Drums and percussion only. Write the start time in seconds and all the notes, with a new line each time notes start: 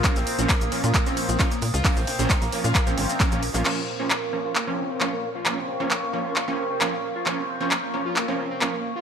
0.04 kick, clap, closed hi-hat, ride, shaker
0.16 snare, closed hi-hat, shaker
0.27 closed hi-hat, open hi-hat, ride
0.39 closed hi-hat, shaker
0.49 kick, snare, clap, closed hi-hat, ride, shaker
0.61 closed hi-hat, shaker
0.72 closed hi-hat, open hi-hat, ride
0.84 closed hi-hat, shaker
0.94 kick, clap, closed hi-hat, ride, shaker
1.06 snare, closed hi-hat, shaker
1.17 closed hi-hat, open hi-hat, ride
1.28 closed hi-hat, shaker
1.39 kick, snare, clap, closed hi-hat, ride, shaker
1.51 closed hi-hat, shaker
1.62 closed hi-hat, open hi-hat, ride
1.74 closed hi-hat, shaker
1.85 kick, clap, closed hi-hat, open hi-hat, ride, shaker
1.97 closed hi-hat, shaker
2.07 snare, closed hi-hat, open hi-hat, ride
2.19 snare, closed hi-hat, shaker
2.30 kick, snare, clap, closed hi-hat, ride, shaker
2.42 snare, closed hi-hat, shaker
2.52 closed hi-hat, open hi-hat, ride
2.64 snare, closed hi-hat, shaker
2.75 kick, clap, closed hi-hat, ride, shaker
2.87 closed hi-hat, shaker
2.98 closed hi-hat, open hi-hat, ride
3.09 snare, closed hi-hat, shaker
3.20 kick, snare, clap, closed hi-hat, ride, shaker
3.32 closed hi-hat, shaker
3.42 closed hi-hat, open hi-hat, ride
3.54 snare, closed hi-hat, shaker
3.65 clap, crash
4.10 clap
4.55 clap
5.01 clap
5.46 clap
5.91 clap
6.36 clap
6.81 clap
7.26 clap
7.71 clap
8.16 clap
8.61 clap